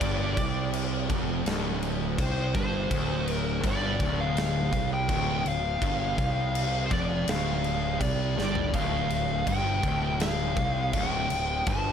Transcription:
Already playing: D5
0.01 G1 G2, kick, crash
0.37 C2 C3, kick, crash
0.73 crash
1.10 F1 F2, kick, crash
1.46 D1 D2, snare, crash
1.82 crash
2.18 C2 C3 C5, kick, crash
2.55 G1 G2 C5, kick, crash
2.91 D1 D2, kick, crash
3.28 crash
3.34 A#4
3.64 G1 G2 D5, kick, crash
4.00 D1 D2, kick, crash
4.20 F5
4.37 F5, snare, crash
4.73 C2 C3, kick, crash
4.94 G5
5.09 D1 D2, kick, crash
5.46 D1 D2 F5, crash
5.82 G1 G2, kick, crash
6.18 C2 C3, kick, crash
6.55 crash
6.86 C5
6.91 F1 F2 D5, kick, crash
7.28 D1 D2 F5, snare, crash
7.64 crash
8.01 C2 C3 D5, kick, crash
8.38 G1 G2 D5, snare
8.55 floor tom
8.74 D1 D2 F5, kick, crash
9.10 crash
9.47 G1 G2 G5, kick, crash
9.83 D1 D2, kick, crash
10.20 F5, snare, crash
10.57 C2 C3, kick, crash
10.93 D1 D2 G5, kick, crash
11.30 D1 D2, crash
11.66 G1 G2 A5, kick, crash

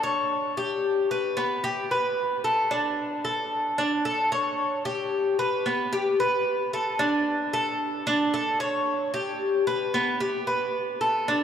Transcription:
0.03 C#5
0.57 G4
1.11 B4
1.37 B3
1.64 G4
1.91 B4
2.44 A4
2.71 D4
3.25 A4
3.78 D4
4.05 A4
4.32 C#5
4.85 G4
5.39 B4
5.66 B3
5.93 G4
6.20 B4
6.73 A4
6.99 D4
7.53 A4
8.07 D4
8.34 A4
8.60 C#5
9.14 G4
9.67 B4
9.94 B3
10.20 G4
10.47 B4
11.01 A4
11.28 D4

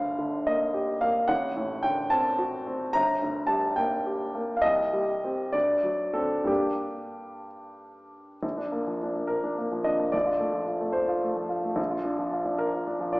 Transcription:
Already playing: G1 D2 F5
0.18 D3
0.47 A#3 D#5
0.74 G4
1.01 A#3 F5
1.28 A1 F#5
1.56 A2
1.83 D3 G5
2.10 C4 A5
2.38 F#4
2.67 C4
2.93 G1 A#5
3.22 D2
3.47 G3 A5
3.76 A#3 G5
4.06 G4
4.35 A#3
4.57 F5
4.62 C2 D#5
4.93 G3
5.24 C4 G4
5.53 D2 D5
5.83 F#3
6.13 C4 D4 A4
6.44 G2 G3 A#3 D4 G4
8.43 A#1
8.58 D4
8.72 A#3
8.87 F3
9.03 D4
9.15 A#3
9.27 A#4
9.44 D4
9.58 A#3
9.72 F3
9.84 D4 D#5
9.99 A#3
10.12 A#1 D5
10.26 F4
10.40 A3
10.53 F3
10.66 F4
10.81 A3
10.93 C5
11.08 F4
11.23 A3
11.36 F3
11.49 F4
11.64 A3
11.76 A#1
11.90 F4
12.05 D4
12.18 F3
12.32 F4
12.45 D4
12.58 A#4
12.74 F4
12.87 D4
13.00 F3
13.13 F4 D5

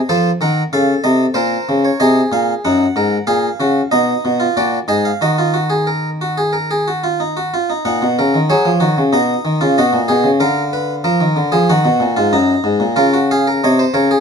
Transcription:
0.09 F3 A4 C5
0.41 D#3 A#4 F#5
0.73 C#3 A4 F5
1.04 C3 D#5
1.34 A#2 A#4 C5
1.69 C#3
1.85 C#5
2.00 C3 G#4 D#5
2.32 A#2 F5
2.65 F#2 D#4 F#5
2.96 G#2 A#4
3.27 A#2 G#4 F5
3.60 C#3 F#4
3.92 B2 D#4 D#5
4.25 B2
4.40 F4
4.57 A#2 F#4 D5
4.88 G#2 G#4 D#5
5.05 F5
5.21 D#3 F#4 D#5
5.38 F4
5.54 F#4
5.70 G#4
5.87 A#4
6.21 F#4
6.38 G#4
6.53 A#4
6.71 G#4
6.88 F#4
7.04 F4
7.20 D#4
7.37 F#4
7.54 F4
7.70 D#4
7.85 A#2 D#4 F#5
8.02 B2
8.19 C#3 A#4
8.34 D#3
8.50 F#3 G#4 C#5
8.65 F3
8.80 D#3 F#4
8.98 C#3
9.13 B2 D#4 D#5
9.45 D#3
9.61 C#3 F4
9.78 B2 F#4 D#5
9.93 A#2
10.08 B2 G#4
10.24 C#3
10.40 D3 A#4 F5
10.73 B4
11.04 F3 A#4
11.20 D#3
11.36 D3
11.52 F3 G#4
11.69 D#3 F#4 F#5
11.85 B2
12.00 A#2
12.17 G#2 F4
12.33 F#2 D#4 A#5
12.64 G#2
12.80 A#2
12.96 C#3 F4 A#4
13.13 F#4
13.31 G#4 F5
13.47 A#4
13.64 C3 C#5 D#5
13.79 C5
13.94 C#3 A#4 C#5
14.11 G#4

